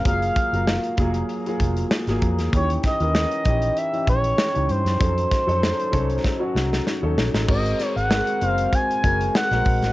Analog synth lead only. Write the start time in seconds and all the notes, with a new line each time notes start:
0.07 F5
2.56 C#5
2.86 D#5
3.78 E5
4.09 C#5
4.71 C5
7.50 D#5
7.96 F#5
8.46 F5
8.75 G#5
9.36 F#5